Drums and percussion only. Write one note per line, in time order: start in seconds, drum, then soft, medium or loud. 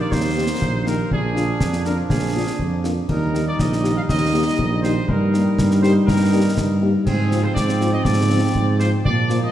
0.12 concert bass drum medium
0.12 snare medium
0.62 concert bass drum medium
0.87 snare soft
1.11 concert bass drum medium
1.37 snare soft
1.60 concert bass drum medium
1.60 snare medium
1.73 snare soft
1.85 snare medium
2.10 concert bass drum medium
2.10 snare medium
2.59 concert bass drum medium
2.84 snare medium
3.09 concert bass drum medium
3.09 crash soft
3.35 snare soft
3.59 concert bass drum medium
3.59 snare medium
3.73 snare soft
3.85 snare medium
4.09 concert bass drum medium
4.09 snare medium
4.59 concert bass drum medium
4.84 snare soft
5.09 concert bass drum medium
5.34 snare soft
5.59 concert bass drum medium
5.59 snare medium
5.71 snare medium
5.83 snare medium
6.08 concert bass drum medium
6.08 snare medium
6.57 concert bass drum medium
6.57 snare medium
7.07 concert bass drum medium
7.07 crash soft
7.32 snare soft
7.56 concert bass drum medium
7.56 snare medium
7.69 snare medium
7.81 snare soft
8.05 concert bass drum medium
8.05 snare medium
8.55 concert bass drum medium
8.80 snare medium
9.05 concert bass drum medium
9.30 snare soft